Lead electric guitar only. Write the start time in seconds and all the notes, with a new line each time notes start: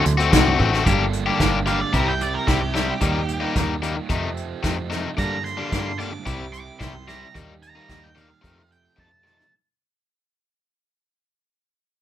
1.68 F5
1.81 D5
1.95 A#4
2.08 G5
2.22 D5
2.35 A#4
2.48 G4
5.18 A#5
5.45 C6
5.99 D6
6.27 D6
6.53 D6
6.79 C6
7.08 A#5
7.63 A#5
7.77 A#5
8.04 G5
8.18 F5
8.72 G5
8.99 A5
9.26 A5